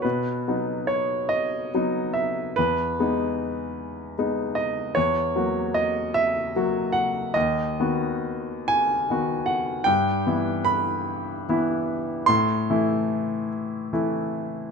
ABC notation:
X:1
M:12/8
L:1/8
Q:3/8=49
K:B
V:1 name="Grand piano"
B2 c d2 e B4- B d | c2 d e2 f d3 g2 f | [K:Em] g2 b4 c'3 z3 |]
V:2 name="Grand piano"
B,, [F,B,D]3 [F,B,D]2 E,, [G,B,D]3 [G,B,D]2 | E,, [F,A,F]3 [F,A,F]2 D,, [D,B,F]3 [D,B,F]2 | [K:Em] G,, [E,B,E]3 [E,B,E]2 A,, [E,A,E]3 [E,A,E]2 |]